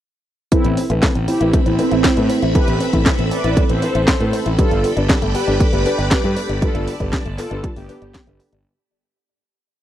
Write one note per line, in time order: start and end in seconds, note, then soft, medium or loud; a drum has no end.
0.52 0.63 A3 medium
0.52 0.84 C4 medium
0.52 4.55 C4 medium
0.52 0.87 C4 medium
0.52 0.84 E4 loud
0.52 0.87 E4 medium
0.52 0.87 A4 medium
0.52 8.61 A4 medium
0.52 0.87 B4 medium
0.52 4.55 E5 medium
0.52 4.55 B5 medium
0.52 kick loud
0.52 closed hi-hat medium
0.64 0.76 A1 medium
0.64 0.76 B3 medium
0.64 closed hi-hat soft
0.77 0.88 C4 medium
0.77 open hi-hat loud
0.90 1.01 A1 medium
0.90 1.10 C4 medium
0.90 0.97 E4 medium
0.90 1.10 E4 medium
0.90 1.10 A4 medium
0.90 1.10 B4 loud
0.90 closed hi-hat soft
1.03 1.14 A3 medium
1.03 kick loud
1.03 snare loud
1.03 clap medium
1.03 closed hi-hat medium
1.15 1.26 A1 medium
1.15 1.26 B3 medium
1.15 closed hi-hat soft
1.28 1.39 C4 medium
1.28 1.60 E4 medium
1.28 1.60 G4 loud
1.28 open hi-hat loud
1.41 1.52 A1 medium
1.41 1.76 C4 medium
1.41 1.47 E4 medium
1.41 1.76 E4 medium
1.41 1.76 A4 medium
1.41 1.76 B4 medium
1.41 closed hi-hat soft
1.53 1.65 A3 medium
1.53 kick loud
1.53 closed hi-hat medium
1.66 1.77 A1 medium
1.66 1.77 B3 medium
1.66 2.45 C4 medium
1.66 2.45 E4 loud
1.66 closed hi-hat soft
1.79 1.90 C4 medium
1.79 1.99 C4 medium
1.79 1.99 E4 medium
1.79 1.99 A4 medium
1.79 1.99 B4 loud
1.79 open hi-hat loud
1.91 2.03 A1 medium
1.91 1.98 E4 medium
1.91 closed hi-hat soft
2.04 2.15 A3 medium
2.04 kick loud
2.04 snare loud
2.04 clap loud
2.04 closed hi-hat medium
2.17 2.28 A2 medium
2.17 2.28 B3 medium
2.17 2.52 C4 medium
2.17 2.52 E4 medium
2.17 2.52 A4 medium
2.17 2.52 B4 medium
2.17 closed hi-hat soft
2.30 2.41 C4 medium
2.30 open hi-hat loud
2.42 2.54 A1 medium
2.42 2.49 E4 medium
2.42 closed hi-hat soft
2.55 2.66 A3 medium
2.55 2.90 C4 medium
2.55 2.90 E4 medium
2.55 2.87 G4 medium
2.55 2.90 A4 medium
2.55 2.87 B4 loud
2.55 2.90 B4 medium
2.55 kick loud
2.55 closed hi-hat medium
2.68 2.79 A1 medium
2.68 2.79 B3 medium
2.68 closed hi-hat soft
2.80 2.92 C4 medium
2.80 open hi-hat loud
2.93 3.04 A1 medium
2.93 3.13 C4 medium
2.93 3.00 E4 medium
2.93 3.13 E4 medium
2.93 3.13 A4 medium
2.93 3.13 B4 loud
2.93 kick medium
2.93 closed hi-hat soft
3.06 3.17 A3 medium
3.06 kick loud
3.06 snare loud
3.06 clap medium
3.06 closed hi-hat medium
3.19 3.30 A1 medium
3.19 3.30 B3 medium
3.19 closed hi-hat soft
3.31 3.43 C4 medium
3.31 3.64 B4 medium
3.31 3.64 D5 loud
3.31 open hi-hat loud
3.44 3.55 A1 medium
3.44 3.79 C4 medium
3.44 3.51 E4 medium
3.44 3.79 E4 medium
3.44 3.79 A4 medium
3.44 3.79 B4 medium
3.44 closed hi-hat soft
3.57 3.68 A3 medium
3.57 kick loud
3.57 closed hi-hat medium
3.69 3.81 A1 medium
3.69 3.81 B3 medium
3.69 4.48 A4 medium
3.69 4.48 C5 loud
3.69 closed hi-hat soft
3.82 3.93 C4 medium
3.82 4.02 C4 medium
3.82 4.02 E4 medium
3.82 4.02 A4 medium
3.82 4.02 B4 loud
3.82 open hi-hat loud
3.95 4.06 A1 medium
3.95 4.02 E4 medium
3.95 closed hi-hat soft
4.08 4.19 A3 medium
4.08 kick loud
4.08 snare loud
4.08 clap loud
4.08 closed hi-hat medium
4.20 4.31 A2 medium
4.20 4.32 B3 medium
4.20 4.56 C4 medium
4.20 4.56 E4 medium
4.20 4.56 A4 medium
4.20 4.56 B4 medium
4.20 closed hi-hat soft
4.33 4.44 C4 medium
4.33 open hi-hat loud
4.46 4.57 A1 medium
4.46 4.52 E4 medium
4.46 closed hi-hat soft
4.58 4.70 G3 medium
4.58 4.94 D4 medium
4.58 4.91 F4 medium
4.58 4.94 G4 medium
4.58 4.91 A4 loud
4.58 4.94 A4 medium
4.58 4.94 B4 medium
4.58 8.61 D5 medium
4.58 6.60 G5 medium
4.58 8.61 B5 medium
4.58 kick loud
4.58 closed hi-hat medium
4.71 4.82 G1 medium
4.71 4.82 A3 medium
4.71 closed hi-hat soft
4.84 4.95 B3 medium
4.84 open hi-hat loud
4.97 5.08 G1 medium
4.97 5.03 D4 medium
4.97 5.17 D4 medium
4.97 5.17 G4 medium
4.97 5.17 A4 medium
4.97 5.17 B4 medium
4.97 closed hi-hat soft
5.09 5.20 G3 medium
5.09 kick loud
5.09 snare loud
5.09 clap medium
5.09 closed hi-hat medium
5.22 5.33 G1 medium
5.22 5.33 A3 medium
5.22 closed hi-hat soft
5.35 5.46 B3 medium
5.35 5.67 G4 medium
5.35 5.67 B4 loud
5.35 open hi-hat loud
5.47 5.59 G1 medium
5.47 5.54 D4 medium
5.47 5.83 D4 medium
5.47 5.83 G4 medium
5.47 5.83 A4 medium
5.47 5.83 B4 medium
5.47 closed hi-hat soft
5.60 5.71 G3 medium
5.60 kick loud
5.60 closed hi-hat medium
5.73 5.84 G1 medium
5.73 5.84 A3 medium
5.73 6.52 G4 medium
5.73 6.52 B4 loud
5.73 closed hi-hat soft
5.86 5.97 B3 medium
5.86 6.06 D4 loud
5.86 6.06 G4 medium
5.86 6.06 A4 medium
5.86 6.06 B4 loud
5.86 open hi-hat loud
5.98 6.09 G1 medium
5.98 6.05 D4 medium
5.98 closed hi-hat soft
6.11 6.22 G3 medium
6.11 kick loud
6.11 snare loud
6.11 clap loud
6.11 closed hi-hat medium
6.24 6.35 G2 medium
6.24 6.35 A3 medium
6.24 6.59 D4 medium
6.24 6.59 G4 medium
6.24 6.59 A4 medium
6.24 6.59 B4 loud
6.24 closed hi-hat soft
6.37 6.48 B3 medium
6.37 open hi-hat loud
6.49 6.60 G1 medium
6.49 6.56 D4 medium
6.49 closed hi-hat soft
6.62 6.73 G3 medium
6.62 6.97 D4 medium
6.62 6.94 F4 medium
6.62 6.97 G4 medium
6.62 6.94 A4 loud
6.62 6.97 A4 medium
6.62 6.97 B4 medium
6.62 8.63 A5 medium
6.62 kick loud
6.62 closed hi-hat medium
6.75 6.86 G1 medium
6.75 6.86 A3 medium
6.75 closed hi-hat soft
6.87 6.98 B3 medium
6.87 open hi-hat loud
7.00 7.11 G1 medium
7.00 7.07 D4 medium
7.00 7.20 D4 medium
7.00 7.20 G4 medium
7.00 7.20 A4 medium
7.00 7.20 B4 medium
7.00 kick medium
7.00 closed hi-hat soft
7.13 7.24 G3 medium
7.13 kick loud
7.13 snare loud
7.13 clap medium
7.13 closed hi-hat medium
7.25 7.37 G1 medium
7.25 7.37 A3 medium
7.25 closed hi-hat soft
7.38 7.49 B3 medium
7.38 7.71 F4 medium
7.38 7.71 A4 loud
7.38 clap medium
7.38 open hi-hat loud
7.51 7.62 G1 medium
7.51 7.58 D4 medium
7.51 7.86 D4 medium
7.51 7.86 G4 medium
7.51 7.86 A4 medium
7.51 7.86 B4 loud
7.51 closed hi-hat soft
7.64 7.75 G3 medium
7.64 kick loud
7.64 closed hi-hat medium
7.76 7.87 G1 medium
7.76 7.87 A3 medium
7.76 8.55 B3 medium
7.76 8.55 G4 loud
7.76 open hi-hat medium
7.89 8.00 B3 medium
7.89 8.09 D4 loud
7.89 8.09 G4 medium
7.89 8.09 A4 medium
7.89 8.09 B4 loud
7.89 open hi-hat loud
8.02 8.13 G1 medium
8.02 8.08 D4 medium
8.02 closed hi-hat soft
8.14 8.26 G3 medium
8.14 kick loud
8.14 snare loud
8.14 clap medium
8.14 closed hi-hat medium
8.27 8.38 G1 medium
8.27 8.38 A3 medium
8.27 8.62 D4 medium
8.27 8.62 G4 medium
8.27 8.62 A4 medium
8.27 8.62 B4 loud
8.27 closed hi-hat soft
8.40 8.51 B3 medium
8.40 open hi-hat loud
8.53 8.64 G1 medium
8.53 8.59 D4 medium
8.53 closed hi-hat soft